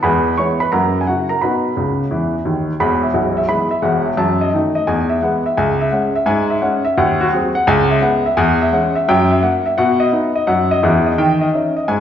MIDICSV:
0, 0, Header, 1, 2, 480
1, 0, Start_track
1, 0, Key_signature, 4, "major"
1, 0, Tempo, 348432
1, 44, Time_signature, 4, 2, 24, 8
1, 11540, Key_signature, 5, "major"
1, 16533, End_track
2, 0, Start_track
2, 0, Title_t, "Grand piano"
2, 0, Program_c, 0, 0
2, 37, Note_on_c, 0, 83, 81
2, 44, Note_on_c, 0, 40, 89
2, 53, Note_on_c, 0, 80, 63
2, 56, Note_on_c, 0, 71, 70
2, 74, Note_on_c, 0, 56, 56
2, 328, Note_off_c, 0, 56, 0
2, 446, Note_off_c, 0, 83, 0
2, 450, Note_off_c, 0, 40, 0
2, 492, Note_off_c, 0, 80, 0
2, 494, Note_off_c, 0, 71, 0
2, 517, Note_on_c, 0, 85, 72
2, 523, Note_on_c, 0, 52, 41
2, 538, Note_on_c, 0, 59, 46
2, 541, Note_on_c, 0, 56, 49
2, 546, Note_on_c, 0, 73, 65
2, 785, Note_off_c, 0, 52, 0
2, 786, Note_off_c, 0, 85, 0
2, 796, Note_off_c, 0, 59, 0
2, 798, Note_off_c, 0, 56, 0
2, 827, Note_off_c, 0, 73, 0
2, 830, Note_on_c, 0, 83, 79
2, 848, Note_on_c, 0, 71, 63
2, 970, Note_off_c, 0, 83, 0
2, 990, Note_on_c, 0, 82, 75
2, 993, Note_off_c, 0, 71, 0
2, 999, Note_on_c, 0, 78, 60
2, 1001, Note_on_c, 0, 42, 86
2, 1005, Note_on_c, 0, 70, 57
2, 1019, Note_on_c, 0, 58, 47
2, 1276, Note_off_c, 0, 58, 0
2, 1331, Note_off_c, 0, 82, 0
2, 1367, Note_off_c, 0, 78, 0
2, 1370, Note_off_c, 0, 70, 0
2, 1392, Note_on_c, 0, 80, 64
2, 1406, Note_off_c, 0, 42, 0
2, 1474, Note_off_c, 0, 80, 0
2, 1477, Note_on_c, 0, 78, 71
2, 1485, Note_on_c, 0, 49, 41
2, 1494, Note_on_c, 0, 64, 45
2, 1495, Note_on_c, 0, 54, 43
2, 1500, Note_on_c, 0, 66, 55
2, 1744, Note_off_c, 0, 78, 0
2, 1745, Note_off_c, 0, 49, 0
2, 1752, Note_off_c, 0, 54, 0
2, 1752, Note_off_c, 0, 64, 0
2, 1782, Note_off_c, 0, 66, 0
2, 1783, Note_on_c, 0, 82, 71
2, 1799, Note_on_c, 0, 70, 49
2, 1924, Note_off_c, 0, 82, 0
2, 1947, Note_off_c, 0, 70, 0
2, 1949, Note_on_c, 0, 83, 66
2, 1958, Note_on_c, 0, 47, 71
2, 1970, Note_on_c, 0, 78, 52
2, 1971, Note_on_c, 0, 71, 56
2, 1982, Note_on_c, 0, 63, 48
2, 2237, Note_off_c, 0, 63, 0
2, 2362, Note_off_c, 0, 47, 0
2, 2430, Note_on_c, 0, 49, 63
2, 2437, Note_on_c, 0, 37, 58
2, 2789, Note_off_c, 0, 49, 0
2, 2793, Note_off_c, 0, 37, 0
2, 2903, Note_on_c, 0, 40, 55
2, 2906, Note_on_c, 0, 52, 68
2, 3264, Note_off_c, 0, 40, 0
2, 3265, Note_off_c, 0, 52, 0
2, 3377, Note_on_c, 0, 51, 59
2, 3378, Note_on_c, 0, 39, 62
2, 3437, Note_off_c, 0, 83, 0
2, 3655, Note_off_c, 0, 71, 0
2, 3655, Note_off_c, 0, 78, 0
2, 3739, Note_off_c, 0, 39, 0
2, 3739, Note_off_c, 0, 51, 0
2, 3854, Note_on_c, 0, 28, 83
2, 3858, Note_on_c, 0, 40, 81
2, 3860, Note_on_c, 0, 83, 79
2, 4173, Note_on_c, 0, 76, 66
2, 4186, Note_off_c, 0, 83, 0
2, 4241, Note_off_c, 0, 28, 0
2, 4243, Note_off_c, 0, 40, 0
2, 4322, Note_on_c, 0, 35, 73
2, 4323, Note_on_c, 0, 78, 55
2, 4327, Note_on_c, 0, 23, 71
2, 4355, Note_off_c, 0, 76, 0
2, 4641, Note_on_c, 0, 76, 73
2, 4649, Note_off_c, 0, 78, 0
2, 4713, Note_off_c, 0, 35, 0
2, 4716, Note_off_c, 0, 23, 0
2, 4798, Note_on_c, 0, 52, 52
2, 4801, Note_on_c, 0, 56, 53
2, 4802, Note_on_c, 0, 83, 77
2, 4803, Note_on_c, 0, 59, 51
2, 4828, Note_off_c, 0, 76, 0
2, 5067, Note_off_c, 0, 52, 0
2, 5070, Note_off_c, 0, 56, 0
2, 5071, Note_off_c, 0, 59, 0
2, 5107, Note_on_c, 0, 76, 72
2, 5135, Note_off_c, 0, 83, 0
2, 5265, Note_on_c, 0, 28, 83
2, 5266, Note_on_c, 0, 40, 75
2, 5266, Note_on_c, 0, 78, 67
2, 5301, Note_off_c, 0, 76, 0
2, 5582, Note_on_c, 0, 76, 58
2, 5598, Note_off_c, 0, 78, 0
2, 5662, Note_off_c, 0, 28, 0
2, 5662, Note_off_c, 0, 40, 0
2, 5748, Note_on_c, 0, 42, 90
2, 5750, Note_on_c, 0, 81, 78
2, 5762, Note_off_c, 0, 76, 0
2, 6077, Note_on_c, 0, 75, 73
2, 6088, Note_off_c, 0, 81, 0
2, 6168, Note_off_c, 0, 42, 0
2, 6248, Note_on_c, 0, 76, 50
2, 6249, Note_on_c, 0, 57, 52
2, 6252, Note_on_c, 0, 51, 49
2, 6259, Note_on_c, 0, 63, 60
2, 6264, Note_off_c, 0, 75, 0
2, 6515, Note_off_c, 0, 57, 0
2, 6517, Note_off_c, 0, 51, 0
2, 6522, Note_off_c, 0, 63, 0
2, 6547, Note_on_c, 0, 75, 76
2, 6569, Note_off_c, 0, 76, 0
2, 6712, Note_on_c, 0, 80, 77
2, 6716, Note_on_c, 0, 40, 83
2, 6723, Note_off_c, 0, 75, 0
2, 7017, Note_on_c, 0, 76, 75
2, 7049, Note_off_c, 0, 80, 0
2, 7132, Note_off_c, 0, 40, 0
2, 7195, Note_on_c, 0, 56, 55
2, 7198, Note_on_c, 0, 78, 60
2, 7209, Note_on_c, 0, 59, 55
2, 7214, Note_off_c, 0, 76, 0
2, 7465, Note_off_c, 0, 56, 0
2, 7474, Note_off_c, 0, 59, 0
2, 7519, Note_on_c, 0, 76, 72
2, 7523, Note_off_c, 0, 78, 0
2, 7679, Note_on_c, 0, 37, 95
2, 7679, Note_on_c, 0, 80, 76
2, 7689, Note_off_c, 0, 76, 0
2, 8003, Note_on_c, 0, 76, 76
2, 8012, Note_off_c, 0, 80, 0
2, 8094, Note_off_c, 0, 37, 0
2, 8149, Note_on_c, 0, 78, 61
2, 8158, Note_on_c, 0, 61, 48
2, 8159, Note_on_c, 0, 56, 56
2, 8187, Note_off_c, 0, 76, 0
2, 8427, Note_off_c, 0, 61, 0
2, 8428, Note_off_c, 0, 56, 0
2, 8479, Note_off_c, 0, 78, 0
2, 8480, Note_on_c, 0, 76, 76
2, 8623, Note_on_c, 0, 44, 95
2, 8627, Note_on_c, 0, 80, 82
2, 8665, Note_off_c, 0, 76, 0
2, 8955, Note_on_c, 0, 76, 76
2, 8966, Note_off_c, 0, 80, 0
2, 9045, Note_off_c, 0, 44, 0
2, 9120, Note_on_c, 0, 61, 64
2, 9120, Note_on_c, 0, 78, 71
2, 9124, Note_on_c, 0, 56, 60
2, 9143, Note_off_c, 0, 76, 0
2, 9388, Note_off_c, 0, 61, 0
2, 9391, Note_off_c, 0, 56, 0
2, 9431, Note_on_c, 0, 76, 86
2, 9445, Note_off_c, 0, 78, 0
2, 9606, Note_off_c, 0, 76, 0
2, 9609, Note_on_c, 0, 39, 97
2, 9609, Note_on_c, 0, 78, 83
2, 9926, Note_on_c, 0, 66, 91
2, 9938, Note_off_c, 0, 78, 0
2, 10021, Note_off_c, 0, 39, 0
2, 10090, Note_on_c, 0, 54, 56
2, 10094, Note_on_c, 0, 60, 59
2, 10094, Note_on_c, 0, 68, 58
2, 10109, Note_off_c, 0, 66, 0
2, 10356, Note_off_c, 0, 54, 0
2, 10359, Note_off_c, 0, 60, 0
2, 10402, Note_on_c, 0, 78, 84
2, 10413, Note_off_c, 0, 68, 0
2, 10569, Note_on_c, 0, 37, 119
2, 10572, Note_off_c, 0, 78, 0
2, 10574, Note_on_c, 0, 80, 95
2, 10886, Note_on_c, 0, 76, 79
2, 10902, Note_off_c, 0, 80, 0
2, 10982, Note_off_c, 0, 37, 0
2, 11050, Note_on_c, 0, 78, 79
2, 11052, Note_on_c, 0, 56, 62
2, 11052, Note_on_c, 0, 59, 63
2, 11071, Note_off_c, 0, 76, 0
2, 11319, Note_off_c, 0, 56, 0
2, 11319, Note_off_c, 0, 59, 0
2, 11372, Note_off_c, 0, 78, 0
2, 11378, Note_on_c, 0, 76, 82
2, 11530, Note_on_c, 0, 80, 93
2, 11532, Note_on_c, 0, 40, 114
2, 11541, Note_off_c, 0, 76, 0
2, 11861, Note_off_c, 0, 80, 0
2, 11867, Note_on_c, 0, 76, 81
2, 11945, Note_off_c, 0, 40, 0
2, 12014, Note_on_c, 0, 56, 58
2, 12023, Note_on_c, 0, 61, 58
2, 12027, Note_on_c, 0, 78, 69
2, 12042, Note_off_c, 0, 76, 0
2, 12281, Note_off_c, 0, 56, 0
2, 12287, Note_off_c, 0, 61, 0
2, 12336, Note_on_c, 0, 76, 85
2, 12342, Note_off_c, 0, 78, 0
2, 12502, Note_off_c, 0, 76, 0
2, 12516, Note_on_c, 0, 79, 88
2, 12519, Note_on_c, 0, 42, 111
2, 12820, Note_on_c, 0, 76, 75
2, 12836, Note_off_c, 0, 79, 0
2, 12922, Note_off_c, 0, 42, 0
2, 12982, Note_on_c, 0, 58, 67
2, 12988, Note_on_c, 0, 78, 71
2, 13001, Note_off_c, 0, 76, 0
2, 13248, Note_off_c, 0, 58, 0
2, 13304, Note_on_c, 0, 76, 81
2, 13305, Note_off_c, 0, 78, 0
2, 13468, Note_off_c, 0, 76, 0
2, 13468, Note_on_c, 0, 78, 94
2, 13476, Note_on_c, 0, 47, 102
2, 13773, Note_on_c, 0, 75, 86
2, 13794, Note_off_c, 0, 78, 0
2, 13882, Note_off_c, 0, 47, 0
2, 13942, Note_on_c, 0, 59, 57
2, 13943, Note_on_c, 0, 76, 61
2, 13950, Note_on_c, 0, 63, 63
2, 13959, Note_off_c, 0, 75, 0
2, 14209, Note_off_c, 0, 59, 0
2, 14215, Note_off_c, 0, 63, 0
2, 14264, Note_off_c, 0, 76, 0
2, 14265, Note_on_c, 0, 75, 76
2, 14425, Note_on_c, 0, 78, 82
2, 14431, Note_on_c, 0, 42, 87
2, 14446, Note_off_c, 0, 75, 0
2, 14755, Note_off_c, 0, 78, 0
2, 14757, Note_on_c, 0, 75, 89
2, 14841, Note_off_c, 0, 42, 0
2, 14919, Note_on_c, 0, 52, 90
2, 14923, Note_on_c, 0, 40, 99
2, 14923, Note_on_c, 0, 76, 59
2, 14933, Note_off_c, 0, 75, 0
2, 15237, Note_off_c, 0, 76, 0
2, 15239, Note_on_c, 0, 75, 69
2, 15303, Note_off_c, 0, 52, 0
2, 15305, Note_off_c, 0, 40, 0
2, 15400, Note_off_c, 0, 75, 0
2, 15402, Note_on_c, 0, 51, 98
2, 15407, Note_on_c, 0, 79, 82
2, 15720, Note_on_c, 0, 75, 70
2, 15728, Note_off_c, 0, 79, 0
2, 15809, Note_off_c, 0, 51, 0
2, 15893, Note_on_c, 0, 76, 58
2, 15894, Note_on_c, 0, 61, 50
2, 15897, Note_off_c, 0, 75, 0
2, 15897, Note_on_c, 0, 63, 49
2, 16155, Note_off_c, 0, 61, 0
2, 16157, Note_off_c, 0, 63, 0
2, 16204, Note_off_c, 0, 76, 0
2, 16208, Note_on_c, 0, 75, 65
2, 16366, Note_off_c, 0, 75, 0
2, 16366, Note_on_c, 0, 80, 80
2, 16370, Note_on_c, 0, 44, 91
2, 16533, Note_off_c, 0, 44, 0
2, 16533, Note_off_c, 0, 80, 0
2, 16533, End_track
0, 0, End_of_file